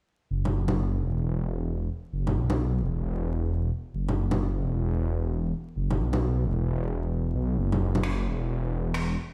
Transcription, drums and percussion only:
0.45 low bongo
0.68 low bongo
2.27 low bongo
2.50 low bongo
4.09 low bongo
4.31 low bongo
5.91 low bongo
6.13 low bongo
7.72 low bongo
7.95 low bongo
8.03 finger snap
8.94 finger snap

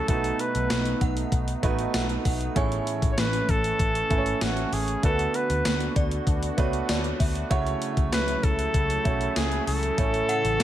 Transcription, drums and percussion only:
0.08 kick, closed hi-hat
0.24 closed hi-hat
0.39 closed hi-hat
0.55 closed hi-hat
0.70 snare, closed hi-hat, tambourine
0.86 closed hi-hat
1.01 kick, closed hi-hat
1.17 closed hi-hat
1.32 kick, closed hi-hat
1.48 closed hi-hat
1.63 kick, closed hi-hat
1.79 closed hi-hat
1.94 snare, closed hi-hat, tambourine
2.09 closed hi-hat
2.25 kick, open hi-hat
2.41 closed hi-hat
2.56 kick, closed hi-hat
2.72 closed hi-hat
2.87 closed hi-hat
3.02 kick, closed hi-hat
3.18 snare, closed hi-hat, tambourine
3.33 closed hi-hat
3.49 kick, closed hi-hat
3.64 closed hi-hat
3.79 kick, closed hi-hat
3.95 closed hi-hat
4.11 kick, closed hi-hat
4.26 closed hi-hat
4.41 snare, closed hi-hat, tambourine
4.57 closed hi-hat
4.73 open hi-hat
4.88 closed hi-hat
5.03 kick, closed hi-hat
5.19 closed hi-hat
5.34 closed hi-hat
5.50 closed hi-hat
5.65 snare, closed hi-hat, tambourine
5.80 closed hi-hat
5.96 kick, closed hi-hat
6.11 closed hi-hat
6.27 kick, closed hi-hat
6.43 closed hi-hat
6.58 kick, closed hi-hat
6.73 closed hi-hat
6.89 snare, closed hi-hat, tambourine
7.04 closed hi-hat
7.20 kick, open hi-hat
7.35 closed hi-hat
7.51 kick, closed hi-hat
7.67 closed hi-hat
7.82 closed hi-hat
7.97 kick, closed hi-hat
8.12 snare, closed hi-hat, tambourine
8.28 closed hi-hat
8.43 kick, closed hi-hat
8.59 closed hi-hat
8.74 kick, closed hi-hat
8.90 closed hi-hat
9.05 kick, closed hi-hat
9.21 closed hi-hat
9.36 snare, closed hi-hat, tambourine
9.52 closed hi-hat
9.67 open hi-hat
9.83 closed hi-hat
9.98 kick, closed hi-hat
10.14 closed hi-hat
10.29 closed hi-hat
10.45 closed hi-hat
10.60 snare

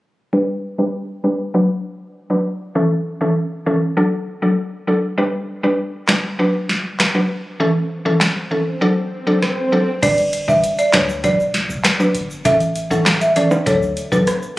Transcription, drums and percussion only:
6.09 snare, clap
6.69 snare
7.00 cross-stick, snare, clap
8.21 snare, clap
9.42 cross-stick, snare
10.03 kick, closed hi-hat, crash, shaker
10.18 closed hi-hat, shaker
10.33 closed hi-hat, shaker
10.48 kick, shaker
10.63 closed hi-hat, shaker
10.78 closed hi-hat, shaker
10.93 snare, clap, closed hi-hat, shaker
11.09 shaker
11.24 kick, closed hi-hat, shaker
11.40 shaker
11.54 snare, closed hi-hat, shaker
11.70 shaker
11.84 cross-stick, snare, clap, closed hi-hat, shaker
12.00 shaker
12.15 closed hi-hat, shaker
12.31 shaker
12.45 kick, closed hi-hat, shaker
12.60 closed hi-hat, shaker
12.76 closed hi-hat, shaker
12.91 shaker
13.06 snare, clap, closed hi-hat, shaker
13.21 closed hi-hat, shaker
13.36 closed hi-hat, shaker
13.51 high timbale, shaker
13.67 kick, closed hi-hat, shaker
13.82 shaker
13.97 closed hi-hat, shaker
14.12 kick, shaker
14.27 cross-stick, closed hi-hat, shaker
14.42 shaker

